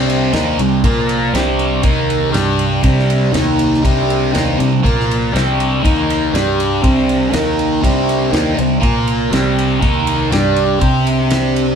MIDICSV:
0, 0, Header, 1, 6, 480
1, 0, Start_track
1, 0, Key_signature, -3, "minor"
1, 0, Tempo, 498339
1, 1779, Time_signature, 4, 2, 24, 8
1, 11320, End_track
2, 0, Start_track
2, 0, Title_t, "Harmonium"
2, 0, Program_c, 0, 20
2, 0, Note_on_c, 0, 55, 65
2, 0, Note_on_c, 0, 62, 60
2, 0, Note_on_c, 0, 72, 60
2, 0, Note_on_c, 0, 79, 77
2, 789, Note_on_c, 0, 70, 66
2, 794, Note_on_c, 0, 77, 76
2, 795, Note_on_c, 0, 58, 64
2, 798, Note_on_c, 0, 53, 69
2, 800, Note_off_c, 0, 62, 0
2, 800, Note_off_c, 0, 79, 0
2, 802, Note_off_c, 0, 55, 0
2, 802, Note_off_c, 0, 72, 0
2, 1267, Note_on_c, 0, 72, 62
2, 1279, Note_off_c, 0, 70, 0
2, 1280, Note_on_c, 0, 62, 58
2, 1281, Note_on_c, 0, 55, 72
2, 1282, Note_off_c, 0, 58, 0
2, 1282, Note_off_c, 0, 77, 0
2, 1283, Note_off_c, 0, 53, 0
2, 1283, Note_on_c, 0, 79, 73
2, 1758, Note_off_c, 0, 72, 0
2, 1765, Note_off_c, 0, 55, 0
2, 1765, Note_off_c, 0, 62, 0
2, 1766, Note_off_c, 0, 79, 0
2, 1776, Note_on_c, 0, 75, 61
2, 1777, Note_on_c, 0, 82, 73
2, 1778, Note_on_c, 0, 63, 61
2, 1784, Note_on_c, 0, 58, 69
2, 2250, Note_on_c, 0, 74, 59
2, 2253, Note_off_c, 0, 63, 0
2, 2253, Note_off_c, 0, 75, 0
2, 2253, Note_off_c, 0, 82, 0
2, 2253, Note_on_c, 0, 62, 66
2, 2257, Note_off_c, 0, 58, 0
2, 2258, Note_on_c, 0, 55, 64
2, 2263, Note_on_c, 0, 79, 73
2, 2730, Note_off_c, 0, 74, 0
2, 2731, Note_off_c, 0, 55, 0
2, 2745, Note_on_c, 0, 55, 68
2, 2747, Note_on_c, 0, 72, 67
2, 3206, Note_off_c, 0, 62, 0
2, 3211, Note_off_c, 0, 79, 0
2, 3217, Note_off_c, 0, 55, 0
2, 3217, Note_on_c, 0, 51, 63
2, 3218, Note_off_c, 0, 72, 0
2, 3225, Note_on_c, 0, 82, 73
2, 3226, Note_on_c, 0, 63, 63
2, 3231, Note_on_c, 0, 70, 59
2, 3693, Note_off_c, 0, 51, 0
2, 3697, Note_off_c, 0, 63, 0
2, 3697, Note_off_c, 0, 82, 0
2, 3700, Note_off_c, 0, 70, 0
2, 3728, Note_on_c, 0, 72, 61
2, 3729, Note_on_c, 0, 55, 75
2, 3731, Note_on_c, 0, 79, 78
2, 3733, Note_on_c, 0, 62, 65
2, 4653, Note_on_c, 0, 77, 76
2, 4659, Note_on_c, 0, 58, 55
2, 4664, Note_off_c, 0, 55, 0
2, 4664, Note_off_c, 0, 72, 0
2, 4665, Note_off_c, 0, 79, 0
2, 4666, Note_off_c, 0, 62, 0
2, 4666, Note_on_c, 0, 53, 68
2, 4672, Note_on_c, 0, 70, 65
2, 5130, Note_off_c, 0, 77, 0
2, 5134, Note_off_c, 0, 58, 0
2, 5137, Note_off_c, 0, 53, 0
2, 5140, Note_off_c, 0, 70, 0
2, 5141, Note_on_c, 0, 55, 71
2, 5144, Note_on_c, 0, 62, 60
2, 5147, Note_on_c, 0, 72, 59
2, 5147, Note_on_c, 0, 79, 71
2, 5611, Note_on_c, 0, 82, 75
2, 5614, Note_off_c, 0, 55, 0
2, 5616, Note_off_c, 0, 62, 0
2, 5617, Note_off_c, 0, 72, 0
2, 5618, Note_off_c, 0, 79, 0
2, 5620, Note_on_c, 0, 63, 60
2, 5625, Note_on_c, 0, 75, 57
2, 5630, Note_on_c, 0, 58, 63
2, 6089, Note_off_c, 0, 82, 0
2, 6094, Note_off_c, 0, 63, 0
2, 6094, Note_on_c, 0, 79, 81
2, 6096, Note_off_c, 0, 75, 0
2, 6099, Note_off_c, 0, 58, 0
2, 6099, Note_on_c, 0, 55, 72
2, 6103, Note_on_c, 0, 62, 62
2, 6106, Note_on_c, 0, 74, 60
2, 6572, Note_on_c, 0, 72, 66
2, 6576, Note_off_c, 0, 74, 0
2, 7045, Note_off_c, 0, 79, 0
2, 7048, Note_off_c, 0, 55, 0
2, 7049, Note_off_c, 0, 72, 0
2, 7050, Note_off_c, 0, 62, 0
2, 7063, Note_on_c, 0, 82, 79
2, 7065, Note_on_c, 0, 63, 60
2, 7065, Note_on_c, 0, 70, 59
2, 7074, Note_on_c, 0, 51, 66
2, 7535, Note_off_c, 0, 82, 0
2, 7536, Note_off_c, 0, 63, 0
2, 7536, Note_off_c, 0, 70, 0
2, 7540, Note_off_c, 0, 51, 0
2, 7542, Note_on_c, 0, 55, 60
2, 7552, Note_on_c, 0, 72, 63
2, 7554, Note_on_c, 0, 62, 54
2, 7554, Note_on_c, 0, 79, 72
2, 8474, Note_on_c, 0, 70, 63
2, 8476, Note_on_c, 0, 53, 63
2, 8479, Note_on_c, 0, 77, 73
2, 8480, Note_on_c, 0, 58, 65
2, 8489, Note_off_c, 0, 55, 0
2, 8494, Note_off_c, 0, 72, 0
2, 8495, Note_off_c, 0, 62, 0
2, 8495, Note_off_c, 0, 79, 0
2, 8960, Note_off_c, 0, 70, 0
2, 8961, Note_off_c, 0, 53, 0
2, 8962, Note_off_c, 0, 58, 0
2, 8962, Note_off_c, 0, 77, 0
2, 8971, Note_on_c, 0, 79, 71
2, 8977, Note_on_c, 0, 55, 70
2, 8979, Note_on_c, 0, 72, 61
2, 8981, Note_on_c, 0, 62, 61
2, 9436, Note_on_c, 0, 82, 72
2, 9440, Note_on_c, 0, 75, 55
2, 9447, Note_on_c, 0, 58, 67
2, 9448, Note_off_c, 0, 79, 0
2, 9450, Note_on_c, 0, 63, 55
2, 9451, Note_off_c, 0, 55, 0
2, 9452, Note_off_c, 0, 72, 0
2, 9453, Note_off_c, 0, 62, 0
2, 9920, Note_off_c, 0, 82, 0
2, 9922, Note_off_c, 0, 75, 0
2, 9926, Note_off_c, 0, 58, 0
2, 9927, Note_off_c, 0, 63, 0
2, 9934, Note_on_c, 0, 62, 73
2, 9939, Note_on_c, 0, 74, 66
2, 9946, Note_on_c, 0, 79, 85
2, 9951, Note_on_c, 0, 55, 75
2, 10409, Note_on_c, 0, 72, 66
2, 10411, Note_off_c, 0, 74, 0
2, 11320, Note_off_c, 0, 55, 0
2, 11320, Note_off_c, 0, 62, 0
2, 11320, Note_off_c, 0, 72, 0
2, 11320, Note_off_c, 0, 79, 0
2, 11320, End_track
3, 0, Start_track
3, 0, Title_t, "Distorted electric guitar"
3, 0, Program_c, 1, 30
3, 0, Note_on_c, 1, 48, 86
3, 0, Note_on_c, 1, 55, 83
3, 0, Note_on_c, 1, 60, 99
3, 310, Note_off_c, 1, 48, 0
3, 313, Note_off_c, 1, 55, 0
3, 314, Note_on_c, 1, 51, 72
3, 317, Note_on_c, 1, 58, 75
3, 321, Note_off_c, 1, 60, 0
3, 325, Note_on_c, 1, 63, 88
3, 559, Note_off_c, 1, 51, 0
3, 560, Note_off_c, 1, 58, 0
3, 564, Note_off_c, 1, 63, 0
3, 572, Note_on_c, 1, 55, 58
3, 573, Note_on_c, 1, 48, 51
3, 767, Note_off_c, 1, 48, 0
3, 767, Note_off_c, 1, 55, 0
3, 811, Note_on_c, 1, 58, 76
3, 815, Note_on_c, 1, 70, 87
3, 817, Note_on_c, 1, 65, 85
3, 1287, Note_on_c, 1, 48, 93
3, 1288, Note_off_c, 1, 58, 0
3, 1290, Note_off_c, 1, 70, 0
3, 1291, Note_off_c, 1, 65, 0
3, 1297, Note_on_c, 1, 55, 93
3, 1298, Note_on_c, 1, 60, 87
3, 1760, Note_off_c, 1, 48, 0
3, 1763, Note_on_c, 1, 51, 92
3, 1766, Note_off_c, 1, 55, 0
3, 1769, Note_on_c, 1, 58, 102
3, 1771, Note_off_c, 1, 60, 0
3, 1775, Note_on_c, 1, 63, 101
3, 2229, Note_off_c, 1, 58, 0
3, 2233, Note_off_c, 1, 63, 0
3, 2233, Note_on_c, 1, 55, 77
3, 2237, Note_on_c, 1, 62, 75
3, 2244, Note_off_c, 1, 51, 0
3, 2247, Note_on_c, 1, 67, 87
3, 2711, Note_off_c, 1, 55, 0
3, 2721, Note_off_c, 1, 62, 0
3, 2722, Note_on_c, 1, 48, 88
3, 2722, Note_on_c, 1, 55, 94
3, 2726, Note_off_c, 1, 67, 0
3, 2728, Note_on_c, 1, 60, 89
3, 3194, Note_off_c, 1, 48, 0
3, 3198, Note_on_c, 1, 51, 87
3, 3203, Note_off_c, 1, 55, 0
3, 3203, Note_off_c, 1, 60, 0
3, 3207, Note_on_c, 1, 63, 99
3, 3208, Note_on_c, 1, 58, 87
3, 3681, Note_off_c, 1, 51, 0
3, 3686, Note_off_c, 1, 58, 0
3, 3686, Note_off_c, 1, 63, 0
3, 3691, Note_on_c, 1, 48, 85
3, 3703, Note_on_c, 1, 55, 85
3, 3708, Note_on_c, 1, 60, 108
3, 4166, Note_off_c, 1, 48, 0
3, 4170, Note_on_c, 1, 51, 82
3, 4172, Note_off_c, 1, 55, 0
3, 4176, Note_off_c, 1, 60, 0
3, 4176, Note_on_c, 1, 58, 80
3, 4183, Note_on_c, 1, 63, 79
3, 4407, Note_off_c, 1, 51, 0
3, 4410, Note_off_c, 1, 58, 0
3, 4413, Note_off_c, 1, 63, 0
3, 4420, Note_on_c, 1, 48, 57
3, 4427, Note_on_c, 1, 55, 63
3, 4611, Note_off_c, 1, 48, 0
3, 4615, Note_off_c, 1, 55, 0
3, 4655, Note_on_c, 1, 58, 82
3, 4663, Note_on_c, 1, 65, 80
3, 4665, Note_on_c, 1, 70, 99
3, 5129, Note_off_c, 1, 58, 0
3, 5133, Note_off_c, 1, 65, 0
3, 5134, Note_off_c, 1, 70, 0
3, 5134, Note_on_c, 1, 55, 83
3, 5135, Note_on_c, 1, 48, 85
3, 5145, Note_on_c, 1, 60, 89
3, 5607, Note_off_c, 1, 48, 0
3, 5608, Note_off_c, 1, 55, 0
3, 5611, Note_on_c, 1, 51, 84
3, 5612, Note_on_c, 1, 58, 93
3, 5614, Note_off_c, 1, 60, 0
3, 5617, Note_on_c, 1, 63, 98
3, 6087, Note_off_c, 1, 51, 0
3, 6088, Note_off_c, 1, 58, 0
3, 6090, Note_off_c, 1, 63, 0
3, 6098, Note_on_c, 1, 55, 72
3, 6101, Note_on_c, 1, 62, 85
3, 6106, Note_on_c, 1, 67, 85
3, 6556, Note_off_c, 1, 55, 0
3, 6567, Note_on_c, 1, 48, 81
3, 6568, Note_on_c, 1, 55, 95
3, 6572, Note_off_c, 1, 62, 0
3, 6574, Note_off_c, 1, 67, 0
3, 6578, Note_on_c, 1, 60, 97
3, 7050, Note_off_c, 1, 48, 0
3, 7050, Note_on_c, 1, 51, 79
3, 7053, Note_off_c, 1, 55, 0
3, 7053, Note_on_c, 1, 58, 88
3, 7054, Note_off_c, 1, 60, 0
3, 7054, Note_on_c, 1, 63, 90
3, 7526, Note_off_c, 1, 51, 0
3, 7527, Note_off_c, 1, 58, 0
3, 7528, Note_off_c, 1, 63, 0
3, 7537, Note_on_c, 1, 48, 82
3, 7540, Note_on_c, 1, 55, 83
3, 7545, Note_on_c, 1, 60, 103
3, 7999, Note_off_c, 1, 48, 0
3, 8003, Note_on_c, 1, 51, 80
3, 8010, Note_off_c, 1, 55, 0
3, 8013, Note_off_c, 1, 60, 0
3, 8013, Note_on_c, 1, 58, 77
3, 8019, Note_on_c, 1, 63, 80
3, 8231, Note_off_c, 1, 51, 0
3, 8234, Note_off_c, 1, 58, 0
3, 8235, Note_on_c, 1, 48, 62
3, 8238, Note_on_c, 1, 55, 57
3, 8250, Note_off_c, 1, 63, 0
3, 8438, Note_off_c, 1, 48, 0
3, 8439, Note_off_c, 1, 55, 0
3, 8475, Note_on_c, 1, 58, 83
3, 8481, Note_on_c, 1, 70, 97
3, 8482, Note_on_c, 1, 65, 90
3, 8958, Note_off_c, 1, 58, 0
3, 8961, Note_off_c, 1, 70, 0
3, 8962, Note_off_c, 1, 65, 0
3, 8966, Note_on_c, 1, 48, 81
3, 8971, Note_on_c, 1, 55, 90
3, 8976, Note_on_c, 1, 60, 89
3, 9442, Note_off_c, 1, 48, 0
3, 9443, Note_off_c, 1, 55, 0
3, 9446, Note_on_c, 1, 51, 90
3, 9447, Note_on_c, 1, 58, 96
3, 9448, Note_off_c, 1, 60, 0
3, 9460, Note_on_c, 1, 63, 111
3, 9923, Note_off_c, 1, 51, 0
3, 9923, Note_off_c, 1, 58, 0
3, 9930, Note_off_c, 1, 63, 0
3, 9935, Note_on_c, 1, 55, 80
3, 9938, Note_on_c, 1, 62, 77
3, 9943, Note_on_c, 1, 67, 86
3, 10389, Note_off_c, 1, 67, 0
3, 10397, Note_off_c, 1, 62, 0
3, 10398, Note_off_c, 1, 55, 0
3, 10401, Note_on_c, 1, 67, 87
3, 10402, Note_on_c, 1, 60, 86
3, 10415, Note_on_c, 1, 72, 101
3, 11320, Note_off_c, 1, 60, 0
3, 11320, Note_off_c, 1, 67, 0
3, 11320, Note_off_c, 1, 72, 0
3, 11320, End_track
4, 0, Start_track
4, 0, Title_t, "Synth drone"
4, 0, Program_c, 2, 95
4, 0, Note_on_c, 2, 36, 77
4, 0, Note_on_c, 2, 48, 76
4, 7540, Note_off_c, 2, 36, 0
4, 7543, Note_off_c, 2, 48, 0
4, 7551, Note_on_c, 2, 36, 76
4, 7555, Note_on_c, 2, 48, 76
4, 11320, Note_off_c, 2, 36, 0
4, 11320, Note_off_c, 2, 48, 0
4, 11320, End_track
5, 0, Start_track
5, 0, Title_t, "Fingered electric bass"
5, 0, Program_c, 3, 33
5, 0, Note_on_c, 3, 36, 68
5, 305, Note_off_c, 3, 36, 0
5, 320, Note_on_c, 3, 39, 85
5, 551, Note_off_c, 3, 39, 0
5, 568, Note_on_c, 3, 36, 67
5, 796, Note_off_c, 3, 36, 0
5, 809, Note_on_c, 3, 46, 75
5, 1260, Note_off_c, 3, 46, 0
5, 1285, Note_on_c, 3, 36, 83
5, 1738, Note_off_c, 3, 36, 0
5, 1774, Note_on_c, 3, 39, 77
5, 2223, Note_off_c, 3, 39, 0
5, 2256, Note_on_c, 3, 43, 87
5, 2704, Note_off_c, 3, 43, 0
5, 2736, Note_on_c, 3, 36, 81
5, 3184, Note_off_c, 3, 36, 0
5, 3218, Note_on_c, 3, 39, 85
5, 3664, Note_off_c, 3, 39, 0
5, 3708, Note_on_c, 3, 36, 72
5, 4150, Note_off_c, 3, 36, 0
5, 4196, Note_on_c, 3, 39, 86
5, 4411, Note_off_c, 3, 39, 0
5, 4433, Note_on_c, 3, 36, 67
5, 4649, Note_off_c, 3, 36, 0
5, 4672, Note_on_c, 3, 46, 80
5, 5112, Note_off_c, 3, 46, 0
5, 5150, Note_on_c, 3, 36, 80
5, 5590, Note_off_c, 3, 36, 0
5, 5636, Note_on_c, 3, 39, 76
5, 6074, Note_off_c, 3, 39, 0
5, 6106, Note_on_c, 3, 43, 97
5, 6548, Note_off_c, 3, 43, 0
5, 6588, Note_on_c, 3, 36, 75
5, 7029, Note_off_c, 3, 36, 0
5, 7065, Note_on_c, 3, 39, 79
5, 7508, Note_off_c, 3, 39, 0
5, 7553, Note_on_c, 3, 36, 72
5, 7992, Note_off_c, 3, 36, 0
5, 8022, Note_on_c, 3, 39, 82
5, 8242, Note_off_c, 3, 39, 0
5, 8267, Note_on_c, 3, 36, 70
5, 8485, Note_off_c, 3, 36, 0
5, 8511, Note_on_c, 3, 46, 80
5, 8950, Note_off_c, 3, 46, 0
5, 8980, Note_on_c, 3, 36, 84
5, 9424, Note_off_c, 3, 36, 0
5, 9468, Note_on_c, 3, 39, 72
5, 9908, Note_off_c, 3, 39, 0
5, 9941, Note_on_c, 3, 43, 95
5, 10383, Note_off_c, 3, 43, 0
5, 10423, Note_on_c, 3, 48, 91
5, 11320, Note_off_c, 3, 48, 0
5, 11320, End_track
6, 0, Start_track
6, 0, Title_t, "Drums"
6, 93, Note_on_c, 9, 51, 68
6, 189, Note_off_c, 9, 51, 0
6, 322, Note_on_c, 9, 51, 74
6, 333, Note_on_c, 9, 38, 92
6, 418, Note_off_c, 9, 51, 0
6, 429, Note_off_c, 9, 38, 0
6, 571, Note_on_c, 9, 51, 63
6, 667, Note_off_c, 9, 51, 0
6, 809, Note_on_c, 9, 36, 99
6, 809, Note_on_c, 9, 51, 80
6, 905, Note_off_c, 9, 36, 0
6, 905, Note_off_c, 9, 51, 0
6, 1051, Note_on_c, 9, 51, 71
6, 1147, Note_off_c, 9, 51, 0
6, 1298, Note_on_c, 9, 51, 85
6, 1308, Note_on_c, 9, 38, 102
6, 1394, Note_off_c, 9, 51, 0
6, 1405, Note_off_c, 9, 38, 0
6, 1534, Note_on_c, 9, 51, 53
6, 1631, Note_off_c, 9, 51, 0
6, 1766, Note_on_c, 9, 51, 87
6, 1772, Note_on_c, 9, 36, 105
6, 1862, Note_off_c, 9, 51, 0
6, 1868, Note_off_c, 9, 36, 0
6, 2023, Note_on_c, 9, 51, 62
6, 2119, Note_off_c, 9, 51, 0
6, 2256, Note_on_c, 9, 51, 84
6, 2267, Note_on_c, 9, 38, 91
6, 2352, Note_off_c, 9, 51, 0
6, 2363, Note_off_c, 9, 38, 0
6, 2495, Note_on_c, 9, 51, 63
6, 2591, Note_off_c, 9, 51, 0
6, 2732, Note_on_c, 9, 51, 82
6, 2736, Note_on_c, 9, 36, 86
6, 2828, Note_off_c, 9, 51, 0
6, 2832, Note_off_c, 9, 36, 0
6, 2881, Note_on_c, 9, 38, 28
6, 2977, Note_off_c, 9, 38, 0
6, 2986, Note_on_c, 9, 51, 72
6, 3082, Note_off_c, 9, 51, 0
6, 3219, Note_on_c, 9, 51, 86
6, 3230, Note_on_c, 9, 38, 106
6, 3315, Note_off_c, 9, 51, 0
6, 3326, Note_off_c, 9, 38, 0
6, 3459, Note_on_c, 9, 51, 59
6, 3555, Note_off_c, 9, 51, 0
6, 3599, Note_on_c, 9, 38, 29
6, 3696, Note_off_c, 9, 38, 0
6, 3704, Note_on_c, 9, 36, 95
6, 3708, Note_on_c, 9, 51, 91
6, 3800, Note_off_c, 9, 36, 0
6, 3804, Note_off_c, 9, 51, 0
6, 3951, Note_on_c, 9, 51, 62
6, 4047, Note_off_c, 9, 51, 0
6, 4187, Note_on_c, 9, 51, 79
6, 4198, Note_on_c, 9, 38, 99
6, 4283, Note_off_c, 9, 51, 0
6, 4294, Note_off_c, 9, 38, 0
6, 4431, Note_on_c, 9, 51, 63
6, 4527, Note_off_c, 9, 51, 0
6, 4669, Note_on_c, 9, 36, 84
6, 4681, Note_on_c, 9, 51, 68
6, 4765, Note_off_c, 9, 36, 0
6, 4778, Note_off_c, 9, 51, 0
6, 4815, Note_on_c, 9, 38, 28
6, 4911, Note_off_c, 9, 38, 0
6, 4926, Note_on_c, 9, 51, 65
6, 5022, Note_off_c, 9, 51, 0
6, 5159, Note_on_c, 9, 51, 83
6, 5170, Note_on_c, 9, 38, 98
6, 5255, Note_off_c, 9, 51, 0
6, 5266, Note_off_c, 9, 38, 0
6, 5395, Note_on_c, 9, 51, 65
6, 5492, Note_off_c, 9, 51, 0
6, 5632, Note_on_c, 9, 36, 98
6, 5637, Note_on_c, 9, 51, 93
6, 5728, Note_off_c, 9, 36, 0
6, 5734, Note_off_c, 9, 51, 0
6, 5878, Note_on_c, 9, 51, 72
6, 5974, Note_off_c, 9, 51, 0
6, 6115, Note_on_c, 9, 51, 86
6, 6126, Note_on_c, 9, 38, 103
6, 6212, Note_off_c, 9, 51, 0
6, 6222, Note_off_c, 9, 38, 0
6, 6357, Note_on_c, 9, 51, 60
6, 6453, Note_off_c, 9, 51, 0
6, 6587, Note_on_c, 9, 51, 84
6, 6588, Note_on_c, 9, 36, 89
6, 6684, Note_off_c, 9, 51, 0
6, 6685, Note_off_c, 9, 36, 0
6, 6831, Note_on_c, 9, 51, 63
6, 6927, Note_off_c, 9, 51, 0
6, 7064, Note_on_c, 9, 51, 91
6, 7075, Note_on_c, 9, 38, 107
6, 7160, Note_off_c, 9, 51, 0
6, 7171, Note_off_c, 9, 38, 0
6, 7310, Note_on_c, 9, 51, 54
6, 7407, Note_off_c, 9, 51, 0
6, 7549, Note_on_c, 9, 36, 97
6, 7554, Note_on_c, 9, 51, 88
6, 7645, Note_off_c, 9, 36, 0
6, 7650, Note_off_c, 9, 51, 0
6, 7793, Note_on_c, 9, 51, 63
6, 7889, Note_off_c, 9, 51, 0
6, 8028, Note_on_c, 9, 51, 73
6, 8038, Note_on_c, 9, 38, 102
6, 8124, Note_off_c, 9, 51, 0
6, 8135, Note_off_c, 9, 38, 0
6, 8269, Note_on_c, 9, 51, 59
6, 8365, Note_off_c, 9, 51, 0
6, 8506, Note_on_c, 9, 51, 67
6, 8507, Note_on_c, 9, 36, 94
6, 8603, Note_off_c, 9, 36, 0
6, 8603, Note_off_c, 9, 51, 0
6, 8742, Note_on_c, 9, 51, 65
6, 8838, Note_off_c, 9, 51, 0
6, 8984, Note_on_c, 9, 51, 84
6, 8995, Note_on_c, 9, 38, 99
6, 9081, Note_off_c, 9, 51, 0
6, 9091, Note_off_c, 9, 38, 0
6, 9233, Note_on_c, 9, 51, 61
6, 9330, Note_off_c, 9, 51, 0
6, 9463, Note_on_c, 9, 51, 77
6, 9464, Note_on_c, 9, 36, 97
6, 9559, Note_off_c, 9, 51, 0
6, 9560, Note_off_c, 9, 36, 0
6, 9701, Note_on_c, 9, 51, 71
6, 9797, Note_off_c, 9, 51, 0
6, 9943, Note_on_c, 9, 51, 79
6, 9953, Note_on_c, 9, 38, 104
6, 10039, Note_off_c, 9, 51, 0
6, 10050, Note_off_c, 9, 38, 0
6, 10176, Note_on_c, 9, 51, 63
6, 10273, Note_off_c, 9, 51, 0
6, 10415, Note_on_c, 9, 51, 81
6, 10420, Note_on_c, 9, 36, 101
6, 10511, Note_off_c, 9, 51, 0
6, 10517, Note_off_c, 9, 36, 0
6, 10660, Note_on_c, 9, 51, 68
6, 10756, Note_off_c, 9, 51, 0
6, 10889, Note_on_c, 9, 51, 97
6, 10899, Note_on_c, 9, 38, 107
6, 10985, Note_off_c, 9, 51, 0
6, 10996, Note_off_c, 9, 38, 0
6, 11138, Note_on_c, 9, 51, 62
6, 11234, Note_off_c, 9, 51, 0
6, 11320, End_track
0, 0, End_of_file